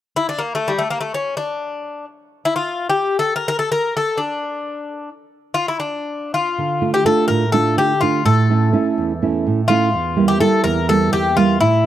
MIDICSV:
0, 0, Header, 1, 3, 480
1, 0, Start_track
1, 0, Key_signature, -1, "minor"
1, 0, Tempo, 500000
1, 11386, End_track
2, 0, Start_track
2, 0, Title_t, "Bouzouki"
2, 0, Program_c, 0, 25
2, 157, Note_on_c, 0, 64, 79
2, 273, Note_off_c, 0, 64, 0
2, 277, Note_on_c, 0, 62, 71
2, 370, Note_on_c, 0, 58, 69
2, 387, Note_off_c, 0, 62, 0
2, 523, Note_off_c, 0, 58, 0
2, 527, Note_on_c, 0, 57, 71
2, 650, Note_on_c, 0, 55, 67
2, 672, Note_off_c, 0, 57, 0
2, 754, Note_on_c, 0, 57, 65
2, 781, Note_off_c, 0, 55, 0
2, 865, Note_off_c, 0, 57, 0
2, 869, Note_on_c, 0, 58, 71
2, 961, Note_off_c, 0, 58, 0
2, 965, Note_on_c, 0, 57, 62
2, 1094, Note_off_c, 0, 57, 0
2, 1098, Note_on_c, 0, 61, 67
2, 1310, Note_off_c, 0, 61, 0
2, 1314, Note_on_c, 0, 62, 70
2, 1963, Note_off_c, 0, 62, 0
2, 2354, Note_on_c, 0, 64, 71
2, 2449, Note_off_c, 0, 64, 0
2, 2456, Note_on_c, 0, 65, 71
2, 2776, Note_off_c, 0, 65, 0
2, 2779, Note_on_c, 0, 67, 71
2, 3059, Note_off_c, 0, 67, 0
2, 3063, Note_on_c, 0, 69, 80
2, 3220, Note_off_c, 0, 69, 0
2, 3223, Note_on_c, 0, 70, 75
2, 3330, Note_off_c, 0, 70, 0
2, 3342, Note_on_c, 0, 70, 86
2, 3441, Note_off_c, 0, 70, 0
2, 3445, Note_on_c, 0, 69, 76
2, 3564, Note_off_c, 0, 69, 0
2, 3568, Note_on_c, 0, 70, 74
2, 3804, Note_off_c, 0, 70, 0
2, 3807, Note_on_c, 0, 69, 70
2, 4009, Note_on_c, 0, 62, 59
2, 4018, Note_off_c, 0, 69, 0
2, 4883, Note_off_c, 0, 62, 0
2, 5321, Note_on_c, 0, 65, 78
2, 5450, Note_off_c, 0, 65, 0
2, 5456, Note_on_c, 0, 64, 74
2, 5561, Note_off_c, 0, 64, 0
2, 5565, Note_on_c, 0, 62, 63
2, 6083, Note_off_c, 0, 62, 0
2, 6086, Note_on_c, 0, 65, 67
2, 6620, Note_off_c, 0, 65, 0
2, 6661, Note_on_c, 0, 67, 69
2, 6773, Note_off_c, 0, 67, 0
2, 6776, Note_on_c, 0, 69, 72
2, 6982, Note_off_c, 0, 69, 0
2, 6986, Note_on_c, 0, 70, 75
2, 7218, Note_off_c, 0, 70, 0
2, 7222, Note_on_c, 0, 69, 72
2, 7440, Note_off_c, 0, 69, 0
2, 7470, Note_on_c, 0, 67, 76
2, 7679, Note_off_c, 0, 67, 0
2, 7686, Note_on_c, 0, 65, 70
2, 7902, Note_off_c, 0, 65, 0
2, 7925, Note_on_c, 0, 69, 76
2, 9265, Note_off_c, 0, 69, 0
2, 9291, Note_on_c, 0, 65, 81
2, 9833, Note_off_c, 0, 65, 0
2, 9869, Note_on_c, 0, 67, 75
2, 9979, Note_off_c, 0, 67, 0
2, 9989, Note_on_c, 0, 69, 77
2, 10208, Note_off_c, 0, 69, 0
2, 10212, Note_on_c, 0, 70, 82
2, 10430, Note_off_c, 0, 70, 0
2, 10455, Note_on_c, 0, 69, 80
2, 10667, Note_off_c, 0, 69, 0
2, 10682, Note_on_c, 0, 67, 79
2, 10896, Note_off_c, 0, 67, 0
2, 10911, Note_on_c, 0, 65, 78
2, 11125, Note_off_c, 0, 65, 0
2, 11141, Note_on_c, 0, 64, 78
2, 11386, Note_off_c, 0, 64, 0
2, 11386, End_track
3, 0, Start_track
3, 0, Title_t, "Nylon-string guitar"
3, 0, Program_c, 1, 24
3, 6320, Note_on_c, 1, 50, 54
3, 6542, Note_on_c, 1, 57, 44
3, 6543, Note_on_c, 1, 62, 38
3, 6545, Note_on_c, 1, 65, 50
3, 6754, Note_off_c, 1, 57, 0
3, 6759, Note_off_c, 1, 62, 0
3, 6761, Note_off_c, 1, 50, 0
3, 6763, Note_off_c, 1, 65, 0
3, 6766, Note_on_c, 1, 57, 47
3, 6769, Note_on_c, 1, 62, 45
3, 6778, Note_on_c, 1, 65, 55
3, 7001, Note_on_c, 1, 45, 60
3, 7136, Note_off_c, 1, 57, 0
3, 7139, Note_off_c, 1, 62, 0
3, 7141, Note_off_c, 1, 65, 0
3, 7233, Note_on_c, 1, 57, 41
3, 7238, Note_on_c, 1, 62, 41
3, 7241, Note_on_c, 1, 65, 47
3, 7447, Note_off_c, 1, 45, 0
3, 7460, Note_on_c, 1, 50, 55
3, 7600, Note_off_c, 1, 57, 0
3, 7603, Note_off_c, 1, 62, 0
3, 7605, Note_off_c, 1, 65, 0
3, 7698, Note_on_c, 1, 57, 45
3, 7704, Note_on_c, 1, 62, 42
3, 7706, Note_on_c, 1, 65, 51
3, 7880, Note_off_c, 1, 57, 0
3, 7882, Note_off_c, 1, 62, 0
3, 7884, Note_off_c, 1, 65, 0
3, 7907, Note_off_c, 1, 50, 0
3, 7922, Note_on_c, 1, 45, 63
3, 8158, Note_on_c, 1, 57, 44
3, 8162, Note_on_c, 1, 61, 41
3, 8164, Note_on_c, 1, 64, 44
3, 8365, Note_off_c, 1, 57, 0
3, 8368, Note_off_c, 1, 45, 0
3, 8371, Note_off_c, 1, 61, 0
3, 8374, Note_off_c, 1, 64, 0
3, 8376, Note_on_c, 1, 57, 45
3, 8381, Note_on_c, 1, 61, 45
3, 8389, Note_on_c, 1, 64, 53
3, 8619, Note_on_c, 1, 40, 59
3, 8746, Note_off_c, 1, 57, 0
3, 8750, Note_off_c, 1, 61, 0
3, 8752, Note_off_c, 1, 64, 0
3, 8850, Note_on_c, 1, 57, 42
3, 8857, Note_on_c, 1, 61, 42
3, 8857, Note_on_c, 1, 64, 49
3, 9061, Note_off_c, 1, 40, 0
3, 9086, Note_on_c, 1, 45, 57
3, 9216, Note_off_c, 1, 57, 0
3, 9217, Note_off_c, 1, 61, 0
3, 9218, Note_off_c, 1, 64, 0
3, 9307, Note_on_c, 1, 57, 43
3, 9310, Note_on_c, 1, 61, 46
3, 9313, Note_on_c, 1, 64, 50
3, 9490, Note_off_c, 1, 57, 0
3, 9490, Note_off_c, 1, 61, 0
3, 9491, Note_off_c, 1, 64, 0
3, 9525, Note_off_c, 1, 45, 0
3, 9542, Note_on_c, 1, 40, 62
3, 9755, Note_on_c, 1, 55, 43
3, 9760, Note_on_c, 1, 58, 40
3, 9763, Note_on_c, 1, 64, 51
3, 9969, Note_off_c, 1, 55, 0
3, 9976, Note_off_c, 1, 64, 0
3, 9978, Note_off_c, 1, 58, 0
3, 9980, Note_on_c, 1, 55, 46
3, 9983, Note_off_c, 1, 40, 0
3, 9988, Note_on_c, 1, 64, 53
3, 9989, Note_on_c, 1, 58, 46
3, 10213, Note_on_c, 1, 40, 58
3, 10353, Note_off_c, 1, 55, 0
3, 10357, Note_off_c, 1, 64, 0
3, 10358, Note_off_c, 1, 58, 0
3, 10452, Note_on_c, 1, 55, 44
3, 10455, Note_on_c, 1, 58, 41
3, 10461, Note_on_c, 1, 64, 46
3, 10663, Note_off_c, 1, 40, 0
3, 10680, Note_on_c, 1, 40, 58
3, 10820, Note_off_c, 1, 55, 0
3, 10820, Note_off_c, 1, 58, 0
3, 10825, Note_off_c, 1, 64, 0
3, 10909, Note_on_c, 1, 55, 43
3, 10912, Note_on_c, 1, 58, 43
3, 10917, Note_on_c, 1, 64, 53
3, 11094, Note_off_c, 1, 55, 0
3, 11095, Note_off_c, 1, 58, 0
3, 11099, Note_off_c, 1, 64, 0
3, 11127, Note_off_c, 1, 40, 0
3, 11142, Note_on_c, 1, 45, 60
3, 11386, Note_off_c, 1, 45, 0
3, 11386, End_track
0, 0, End_of_file